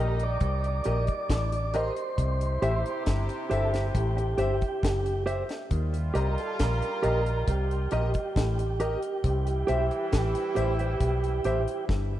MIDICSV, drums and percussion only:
0, 0, Header, 1, 2, 480
1, 0, Start_track
1, 0, Tempo, 882742
1, 1186, Time_signature, 4, 2, 24, 8
1, 6632, End_track
2, 0, Start_track
2, 0, Title_t, "Drums"
2, 106, Note_on_c, 9, 42, 56
2, 160, Note_off_c, 9, 42, 0
2, 220, Note_on_c, 9, 42, 75
2, 223, Note_on_c, 9, 36, 108
2, 275, Note_off_c, 9, 42, 0
2, 277, Note_off_c, 9, 36, 0
2, 348, Note_on_c, 9, 42, 43
2, 402, Note_off_c, 9, 42, 0
2, 457, Note_on_c, 9, 42, 68
2, 511, Note_off_c, 9, 42, 0
2, 583, Note_on_c, 9, 42, 55
2, 590, Note_on_c, 9, 36, 95
2, 637, Note_off_c, 9, 42, 0
2, 644, Note_off_c, 9, 36, 0
2, 704, Note_on_c, 9, 36, 116
2, 707, Note_on_c, 9, 42, 93
2, 708, Note_on_c, 9, 38, 117
2, 759, Note_off_c, 9, 36, 0
2, 762, Note_off_c, 9, 38, 0
2, 762, Note_off_c, 9, 42, 0
2, 829, Note_on_c, 9, 42, 54
2, 883, Note_off_c, 9, 42, 0
2, 945, Note_on_c, 9, 42, 70
2, 999, Note_off_c, 9, 42, 0
2, 1068, Note_on_c, 9, 42, 58
2, 1123, Note_off_c, 9, 42, 0
2, 1185, Note_on_c, 9, 36, 94
2, 1186, Note_on_c, 9, 42, 78
2, 1240, Note_off_c, 9, 36, 0
2, 1241, Note_off_c, 9, 42, 0
2, 1311, Note_on_c, 9, 42, 62
2, 1365, Note_off_c, 9, 42, 0
2, 1428, Note_on_c, 9, 42, 76
2, 1482, Note_off_c, 9, 42, 0
2, 1554, Note_on_c, 9, 42, 45
2, 1608, Note_off_c, 9, 42, 0
2, 1665, Note_on_c, 9, 42, 89
2, 1667, Note_on_c, 9, 38, 97
2, 1670, Note_on_c, 9, 36, 100
2, 1719, Note_off_c, 9, 42, 0
2, 1721, Note_off_c, 9, 38, 0
2, 1724, Note_off_c, 9, 36, 0
2, 1790, Note_on_c, 9, 42, 49
2, 1844, Note_off_c, 9, 42, 0
2, 1908, Note_on_c, 9, 42, 68
2, 1962, Note_off_c, 9, 42, 0
2, 2032, Note_on_c, 9, 42, 59
2, 2036, Note_on_c, 9, 38, 67
2, 2087, Note_off_c, 9, 42, 0
2, 2091, Note_off_c, 9, 38, 0
2, 2146, Note_on_c, 9, 36, 104
2, 2148, Note_on_c, 9, 42, 87
2, 2201, Note_off_c, 9, 36, 0
2, 2202, Note_off_c, 9, 42, 0
2, 2274, Note_on_c, 9, 42, 48
2, 2328, Note_off_c, 9, 42, 0
2, 2382, Note_on_c, 9, 42, 62
2, 2437, Note_off_c, 9, 42, 0
2, 2510, Note_on_c, 9, 42, 54
2, 2513, Note_on_c, 9, 36, 102
2, 2564, Note_off_c, 9, 42, 0
2, 2567, Note_off_c, 9, 36, 0
2, 2627, Note_on_c, 9, 36, 108
2, 2634, Note_on_c, 9, 42, 101
2, 2635, Note_on_c, 9, 38, 127
2, 2682, Note_off_c, 9, 36, 0
2, 2689, Note_off_c, 9, 38, 0
2, 2689, Note_off_c, 9, 42, 0
2, 2751, Note_on_c, 9, 42, 55
2, 2805, Note_off_c, 9, 42, 0
2, 2867, Note_on_c, 9, 42, 70
2, 2921, Note_off_c, 9, 42, 0
2, 2986, Note_on_c, 9, 42, 53
2, 2994, Note_on_c, 9, 38, 76
2, 3040, Note_off_c, 9, 42, 0
2, 3048, Note_off_c, 9, 38, 0
2, 3104, Note_on_c, 9, 42, 74
2, 3105, Note_on_c, 9, 36, 101
2, 3158, Note_off_c, 9, 42, 0
2, 3159, Note_off_c, 9, 36, 0
2, 3229, Note_on_c, 9, 42, 57
2, 3283, Note_off_c, 9, 42, 0
2, 3344, Note_on_c, 9, 42, 77
2, 3398, Note_off_c, 9, 42, 0
2, 3469, Note_on_c, 9, 42, 40
2, 3523, Note_off_c, 9, 42, 0
2, 3586, Note_on_c, 9, 42, 88
2, 3588, Note_on_c, 9, 38, 114
2, 3590, Note_on_c, 9, 36, 98
2, 3640, Note_off_c, 9, 42, 0
2, 3642, Note_off_c, 9, 38, 0
2, 3644, Note_off_c, 9, 36, 0
2, 3709, Note_on_c, 9, 42, 52
2, 3764, Note_off_c, 9, 42, 0
2, 3825, Note_on_c, 9, 42, 66
2, 3879, Note_off_c, 9, 42, 0
2, 3949, Note_on_c, 9, 42, 51
2, 4004, Note_off_c, 9, 42, 0
2, 4065, Note_on_c, 9, 36, 101
2, 4065, Note_on_c, 9, 42, 79
2, 4119, Note_off_c, 9, 42, 0
2, 4120, Note_off_c, 9, 36, 0
2, 4193, Note_on_c, 9, 42, 47
2, 4247, Note_off_c, 9, 42, 0
2, 4301, Note_on_c, 9, 42, 72
2, 4355, Note_off_c, 9, 42, 0
2, 4426, Note_on_c, 9, 42, 54
2, 4431, Note_on_c, 9, 36, 105
2, 4480, Note_off_c, 9, 42, 0
2, 4486, Note_off_c, 9, 36, 0
2, 4547, Note_on_c, 9, 36, 127
2, 4552, Note_on_c, 9, 42, 97
2, 4553, Note_on_c, 9, 38, 118
2, 4601, Note_off_c, 9, 36, 0
2, 4607, Note_off_c, 9, 38, 0
2, 4607, Note_off_c, 9, 42, 0
2, 4671, Note_on_c, 9, 42, 55
2, 4725, Note_off_c, 9, 42, 0
2, 4785, Note_on_c, 9, 42, 67
2, 4840, Note_off_c, 9, 42, 0
2, 4908, Note_on_c, 9, 42, 60
2, 4962, Note_off_c, 9, 42, 0
2, 5024, Note_on_c, 9, 42, 74
2, 5025, Note_on_c, 9, 36, 106
2, 5079, Note_off_c, 9, 36, 0
2, 5079, Note_off_c, 9, 42, 0
2, 5148, Note_on_c, 9, 42, 62
2, 5203, Note_off_c, 9, 42, 0
2, 5265, Note_on_c, 9, 42, 76
2, 5319, Note_off_c, 9, 42, 0
2, 5389, Note_on_c, 9, 42, 45
2, 5443, Note_off_c, 9, 42, 0
2, 5506, Note_on_c, 9, 42, 84
2, 5508, Note_on_c, 9, 38, 118
2, 5509, Note_on_c, 9, 36, 109
2, 5560, Note_off_c, 9, 42, 0
2, 5562, Note_off_c, 9, 38, 0
2, 5564, Note_off_c, 9, 36, 0
2, 5628, Note_on_c, 9, 42, 58
2, 5682, Note_off_c, 9, 42, 0
2, 5743, Note_on_c, 9, 42, 67
2, 5798, Note_off_c, 9, 42, 0
2, 5869, Note_on_c, 9, 42, 54
2, 5923, Note_off_c, 9, 42, 0
2, 5984, Note_on_c, 9, 36, 106
2, 5984, Note_on_c, 9, 42, 89
2, 6038, Note_off_c, 9, 42, 0
2, 6039, Note_off_c, 9, 36, 0
2, 6111, Note_on_c, 9, 42, 49
2, 6165, Note_off_c, 9, 42, 0
2, 6223, Note_on_c, 9, 42, 64
2, 6277, Note_off_c, 9, 42, 0
2, 6349, Note_on_c, 9, 42, 56
2, 6404, Note_off_c, 9, 42, 0
2, 6465, Note_on_c, 9, 36, 126
2, 6469, Note_on_c, 9, 38, 60
2, 6520, Note_off_c, 9, 36, 0
2, 6523, Note_off_c, 9, 38, 0
2, 6632, End_track
0, 0, End_of_file